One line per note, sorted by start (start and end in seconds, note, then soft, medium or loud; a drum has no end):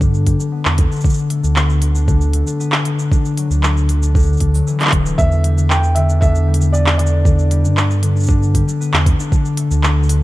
0.00 0.36 G2 medium
0.00 0.38 D3 medium
0.00 0.52 B3 medium
0.00 0.91 D4 medium
0.00 kick loud
0.00 cabasa soft
0.14 cabasa soft
0.27 0.45 G3 medium
0.27 kick medium
0.27 open hi-hat medium
0.39 0.77 D3 medium
0.39 cabasa medium
0.52 1.55 B3 medium
0.65 0.86 E2 medium
0.65 clap medium
0.65 cabasa soft
0.78 1.03 D3 medium
0.78 kick loud
0.78 open hi-hat medium
0.91 1.94 D4 medium
0.91 cabasa soft
0.96 cabasa soft
1.01 1.42 D3 medium
1.01 kick loud
1.01 cabasa soft
1.05 cabasa medium
1.10 cabasa soft
1.14 cabasa medium
1.18 cabasa soft
1.30 2.33 A3 medium
1.30 open hi-hat medium
1.43 2.43 D2 medium
1.43 1.81 D3 medium
1.43 cabasa medium
1.56 2.59 B3 medium
1.56 clap medium
1.56 cabasa medium
1.70 cabasa soft
1.82 2.06 D3 medium
1.82 open hi-hat medium
1.95 2.98 D4 medium
1.95 cabasa medium
2.08 2.45 D3 loud
2.08 kick loud
2.08 cabasa medium
2.21 cabasa soft
2.33 3.63 A3 medium
2.33 open hi-hat medium
2.47 2.84 D3 medium
2.47 cabasa medium
2.60 5.69 B3 medium
2.60 cabasa medium
2.72 clap medium
2.85 3.10 D3 medium
2.85 open hi-hat medium
2.98 4.02 D4 medium
2.98 cabasa medium
3.12 3.49 D3 medium
3.12 kick loud
3.12 cabasa medium
3.25 cabasa soft
3.37 3.55 F#3 medium
3.37 open hi-hat medium
3.50 4.37 D2 loud
3.50 3.88 D3 medium
3.50 cabasa medium
3.63 6.97 A3 medium
3.63 clap medium
3.63 cabasa medium
3.77 cabasa soft
3.89 4.14 D3 medium
3.89 open hi-hat medium
4.02 4.40 D4 medium
4.02 cabasa medium
4.15 4.91 D3 loud
4.15 kick loud
4.15 cabasa soft
4.19 cabasa soft
4.22 cabasa soft
4.25 cabasa soft
4.29 cabasa soft
4.33 cabasa soft
4.37 6.08 D4 medium
4.37 kick medium
4.37 open hi-hat medium
4.37 cabasa soft
4.41 4.62 D2 loud
4.54 4.98 F#3 medium
4.54 cabasa medium
4.67 4.98 E3 medium
4.67 cabasa medium
4.80 clap soft
4.80 cabasa soft
4.82 clap soft
4.85 clap soft
4.87 clap medium
4.90 5.13 D1 medium
4.90 5.17 D3 medium
4.90 kick loud
4.90 clap medium
4.90 open hi-hat medium
5.05 5.23 E3 medium
5.05 cabasa medium
5.18 7.66 E2 loud
5.18 5.56 D3 medium
5.18 5.66 E5 loud
5.18 kick loud
5.18 cabasa medium
5.32 cabasa soft
5.44 5.62 G3 medium
5.44 open hi-hat medium
5.57 5.95 D3 medium
5.57 cabasa medium
5.69 6.73 B3 medium
5.69 5.96 G5 medium
5.69 clap medium
5.69 cabasa medium
5.83 cabasa soft
5.95 6.20 D3 medium
5.95 6.19 E5 medium
5.95 open hi-hat medium
6.09 7.12 D4 medium
6.09 cabasa medium
6.21 6.59 D3 loud
6.21 6.75 E5 medium
6.21 kick loud
6.21 cabasa medium
6.35 cabasa soft
6.47 6.66 G3 medium
6.54 open hi-hat medium
6.60 6.98 D3 medium
6.60 cabasa medium
6.72 7.76 B3 medium
6.72 6.97 D5 medium
6.72 cabasa medium
6.86 clap medium
6.86 cabasa soft
6.98 7.23 D3 medium
6.98 7.98 D5 medium
6.98 open hi-hat medium
7.07 cabasa medium
7.12 8.15 D4 medium
7.25 7.63 D3 medium
7.25 kick loud
7.25 cabasa medium
7.39 cabasa soft
7.51 7.69 G3 medium
7.51 open hi-hat medium
7.64 8.64 G2 loud
7.64 8.01 D3 medium
7.64 cabasa medium
7.77 8.80 B3 medium
7.77 clap medium
7.77 cabasa soft
7.91 cabasa soft
8.03 8.27 D3 medium
8.03 open hi-hat medium
8.15 9.19 D4 medium
8.15 cabasa soft
8.20 cabasa soft
8.23 cabasa soft
8.26 8.66 D3 medium
8.26 kick loud
8.26 cabasa soft
8.30 cabasa soft
8.43 cabasa soft
8.55 8.73 G3 medium
8.55 kick medium
8.55 open hi-hat medium
8.67 9.05 D3 medium
8.67 cabasa medium
8.80 9.83 B3 medium
8.80 cabasa medium
8.94 9.14 E2 medium
8.94 clap medium
8.94 cabasa soft
9.06 9.31 D3 medium
9.06 kick loud
9.06 open hi-hat medium
9.19 10.22 D4 medium
9.19 cabasa medium
9.32 9.70 D3 medium
9.32 kick loud
9.32 cabasa soft
9.45 cabasa soft
9.57 10.23 A3 medium
9.57 open hi-hat medium
9.71 10.23 D2 loud
9.71 10.08 D3 medium
9.71 cabasa medium
9.83 10.23 B3 medium
9.83 clap medium
9.83 cabasa soft
10.03 cabasa soft
10.09 10.23 D3 medium
10.09 open hi-hat medium